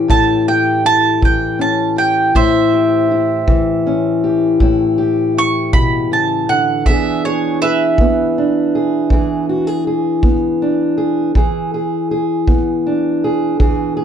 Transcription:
Already playing: E3 C#4 G4
0.08 A2 E4 A5, kick
0.48 G4 G5
0.85 E4 A5
1.21 E3 G5, kick
1.59 C#4 A5
1.96 G4 G5
2.35 A2 E4 C5 E5, kick
2.73 G4
3.11 E4
3.47 E3, kick
3.87 C#4
4.24 G4
4.60 A2 E4, kick
4.98 G4
5.37 E4 C#6
5.73 B2 B5, kick
6.12 C#3 A5
6.49 D3 F#5
6.86 E3 B3 D4 G#4 E5, kick
7.25 G#4 C#5
7.62 G#4 B4 E5
7.98 B3, kick
8.38 D4
8.75 G#4
9.10 E3 G#4, kick
9.49 F#4
9.67 G#4
9.87 G#4
10.23 B3, kick
10.62 D4
10.98 G#4
11.35 E3 G#4, kick
11.74 G#4
12.11 G#4
12.47 B3, kick
12.87 D4
13.24 G#4
13.60 E3 G#4, kick
13.97 G#4

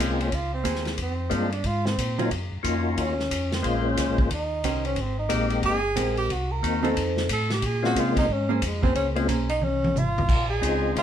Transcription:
Already playing: G#3 A#3 C4 C#4 F4
0.00 C2 A#3, hi-hat pedal, ride
0.21 C#4, ride
0.32 C#2 F4, kick, ride
0.54 C4
0.64 D#2 A#3 G#4 C5, kick, hi-hat pedal, ride
0.75 snare
0.85 snare, ride
0.97 F2, kick, ride
1.02 C4
1.29 G2 G#3 A#3 C4 D4 F4, kick, hi-hat pedal, ride
1.34 A#3
1.52 D4, ride
1.64 G#2 F4, kick, ride
1.86 C4, snare
1.98 A#2, kick, hi-hat pedal, ride
2.18 D#3 F#3 A#3 C#4 D#4 F4, ride
2.31 F#2, kick, ride
2.52 F#2
2.63 F2 A#3 C#4 D#4 F4 F#4, kick, hi-hat pedal, ride
2.98 D#2 C#4, kick, ride
3.19 snare
3.31 F2, kick, hi-hat pedal, ride
3.52 C4, snare, ride
3.62 A#1 G#3 A#3 C#4 F4 C5, kick, ride
3.67 A#3
3.86 C#4
3.97 C#2, kick, snare, hi-hat pedal, ride
4.09 A#1
4.18 G#1, kick
4.30 D#2 D#4, kick, ride
4.64 C2 D#3 C#4 G4 C5, kick, hi-hat pedal, ride
4.85 C#4, ride
4.96 G#1, kick, ride
5.01 C4
5.19 D#4
5.29 A#1 G#3 A#3 C4 D#4 G4, kick, hi-hat pedal, ride
5.50 ride
5.63 G1 G#4, kick, ride
5.96 A#1 G#3 C4 G4 A#4, kick, hi-hat pedal, ride
6.17 G4, ride
6.30 C2 F#4, kick, ride
6.52 A#4
6.63 D#2 A#3 C4 D#4 F#4, kick, hi-hat pedal, ride
6.83 F3 C4 D#4 A4, ride
6.96 F2, kick, ride
7.17 snare
7.29 A2 A4, kick, hi-hat pedal, ride
7.50 G4, snare, ride
7.62 A#2 G#4, kick, ride
7.82 G#3 A#3 C4 C#4 F4 F#4, snare
7.96 C3, kick, hi-hat pedal, ride
8.00 F4
8.17 D#4, kick, ride
8.29 G#2 C#4, kick
8.49 F3 A#3 C#4 G#4 C5
8.62 F2 G#3, kick, hi-hat pedal, ride
8.82 A#3 C4 C#4 G#4 C5, kick
8.95 C#2 C#4, kick, ride
9.16 G#3 A#3 C4 C#4 F4, ride
9.28 B1 A#3 C#4 G#4 C5, kick, hi-hat pedal, ride
9.49 D#4, ride
9.61 C2 C#4, high tom
9.84 high tom
9.94 G#1 F4, hi-hat pedal, mid tom
10.18 floor tom
10.29 A#1, kick, crash
10.50 G#4
10.61 C#2 G#3 C4 C#4 D#4 F4, kick, hi-hat pedal, ride
10.96 C2 F4, kick, ride

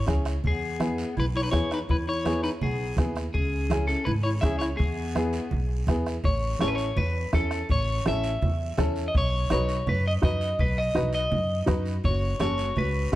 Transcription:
0.06 C#2 C#4 E4 G#4, bombo low, bombo rim, high conga, short guiro
0.25 bombo rim, short guiro
0.44 E2 G#4, bombo low, high conga, low conga, long guiro
0.48 B3
0.80 B3 E4 G#4, bombo rim, high conga, short guiro
0.98 short guiro
1.17 B1 E4 B4, high conga, low conga, long guiro
1.35 E4 C#5
1.42 D#4 B4
1.51 E2 B3 E4 G#4 C#5, bombo low, bombo rim, high conga, short guiro
1.71 D#4 B4, bombo rim, short guiro
1.89 E2 E4 B4, bombo low, high conga, low conga, long guiro
2.07 E4 C#5
2.24 B3 E4 G#4, bombo rim, high conga, short guiro
2.43 D#4 B4, short guiro
2.61 B1 B3 G#4, high conga, low conga, long guiro
2.97 D#2 B3 E4 G#4, bombo low, bombo rim, high conga, low conga, short guiro
3.16 bombo rim, short guiro
3.33 C#2 C#4 G#4, bombo low, high conga, long guiro
3.70 C#4 E4 G#4, bombo rim, high conga, short guiro
3.87 C#4 A4, short guiro
4.05 G#1 E4 B4, high conga, low conga, long guiro
4.23 E4 C#5
4.41 C#2 C#4 E4 G#4 E5, bombo low, bombo rim, high conga, short guiro
4.59 E4 C#5, bombo rim, short guiro
4.77 E2 B3 G#4, bombo low, high conga, low conga, long guiro
5.15 B3 E4 G#4, bombo rim, high conga, short guiro
5.33 short guiro
5.51 B1, high conga, low conga, long guiro
5.87 E2 B3 E4 G#4, bombo low, bombo rim, high conga, low conga, short guiro
6.06 bombo rim, short guiro
6.24 A1 C#5, bombo low, high conga, low conga, long guiro
6.59 A1 C#4 E4 A4 C#5, bombo rim, high conga, short guiro
6.68 B4
6.75 C#5, short guiro
6.96 E2 B4, high conga, low conga, long guiro
7.33 E2 C#4 E4 A4, bombo low, bombo rim, high conga, short guiro
7.51 bombo rim, short guiro
7.69 A1 C#5, bombo low, high conga, low conga, long guiro
8.05 A1 C#4 E4 A4 E5, bombo rim, high conga, short guiro
8.24 short guiro
8.42 E2, high conga, low conga, long guiro
8.77 E2 C#4 E4 A4, bombo low, bombo rim, high conga, low conga, short guiro
8.96 short guiro
9.08 D#5
9.14 B1 C#5, bombo low, high conga, long guiro
9.50 B1 D#4 F#4 B4 C#5, bombo rim, high conga, short guiro
9.69 short guiro
9.87 F#2 B4, high conga, low conga, long guiro
10.07 D#5
10.22 F#2 D#4 F#4 B4 D#5, bombo low, bombo rim, high conga, low conga, short guiro
10.41 short guiro
10.59 B1 B4, bombo low, high conga, low conga, long guiro
10.78 D#5
10.95 B1 D#4 F#4 B4, bombo rim, high conga, short guiro
11.13 D#5, short guiro
11.30 F#2, high conga, low conga, long guiro
11.66 F#2 D#4 F#4 B4, bombo low, bombo rim, high conga, low conga, short guiro
11.86 short guiro
12.04 F#1 F#4 C#5, bombo low, high conga, low conga, long guiro
12.39 F#1 C#4 F#4 A4 C#5, bombo rim, high conga, short guiro
12.58 short guiro
12.76 C#2 F#4 B4, high conga, low conga, long guiro
13.12 C#4 F#4

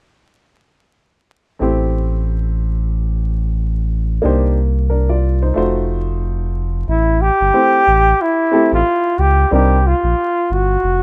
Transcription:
1.59 A1 A3 C4 E4 G4 C5
4.22 C2 A#3 D4 D#4 G4 C5
4.90 D4 A#4
5.09 F4 D5
5.42 D#4 C5
5.54 F1 A3 D#4 F4 F#4 C5
6.88 A1 E4
7.21 G4
7.40 G1
7.54 A3 C4 E4 G4 C5
7.87 A1
8.22 E4
8.51 A3 C4 E4 G4 A4
8.72 A1 F4
9.18 C#2 G4
9.51 C2 G3 C4 D4 D#4 G4 A#4
9.87 F4
10.03 A#1
10.50 G1 F#4
10.83 F1

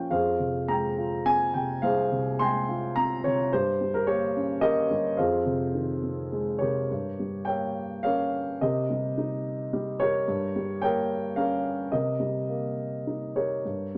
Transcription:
Already playing: A#2 F3 C#4 F4 A#4 C#5 G5
0.10 F2 G#4 C5 F5
0.39 C3
0.68 G#3 G5 A#5
0.98 F4
1.25 C4 G#5
1.54 C3 G5
1.82 C2 G#4 C5 F5
2.11 C3
2.39 G#3 G5 G#5 C6
2.69 F4
2.96 C4 A#5
3.24 C3 C#5
3.53 G2 G4 C5
3.81 G3
3.94 A#4
4.07 A#3 G4 A#4 C#5
4.36 C#4
4.61 A#3 G4 A#4 D#5
4.90 G3
5.17 F2 G#4 C5 F5
5.45 C3
5.74 D#3
6.03 C4
6.32 G#3
6.59 C3 G4 A#4 C#5
6.91 G2
7.19 G3
7.45 A#4 C#5 G5
7.50 A#3
8.03 C#4 A#4 C#5 F5
8.61 C3 G4 A#4 D#5
8.90 G3
9.18 D#4
9.73 G3
10.00 G4 A#4 C#5
10.28 G2
10.56 G3
10.82 A#3 A#4 C#5 G5
11.36 C#4 A#4 C#5 F5
11.92 C3 G4 A#4 D#5
12.20 G3
12.49 A#3
13.07 D#4
13.36 G4 A#4 C#5
13.65 G2
13.95 G3

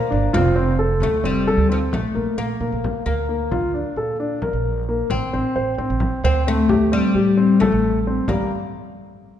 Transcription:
Already playing: A#3
0.10 G1 D4
0.33 F1 C4 F4, frame drum
0.56 C4
0.79 A4
1.00 D2 A3, frame drum
1.24 F1 G3 C4, frame drum
1.47 A4, frame drum
1.57 D2
1.69 F3 C4
1.92 A#1 A3, frame drum
2.15 A#1 A#3
2.38 A#1 A#3 A#4
2.60 A#2 A#3
2.72 A#1
2.84 frame drum
3.06 D2 A#3 A#4, frame drum
3.29 A#3
3.51 F4, frame drum
3.74 D4
3.96 A#2 A4
4.20 D4
4.42 A#4, frame drum
4.53 A#1
4.66 frame drum
4.89 A#3
5.10 A1 C4, frame drum
5.33 A1 C4
5.56 A1 C5
5.78 A2 C4
5.90 A1
6.00 frame drum
6.23 D2 C4 C5, frame drum
6.47 A3 C4
6.69 G4, frame drum
6.92 G3 C4
7.15 A2 G4
7.37 C4
7.60 A3 A4, frame drum
7.72 A1
8.07 C4, frame drum
8.28 G1 G3 A#3, frame drum

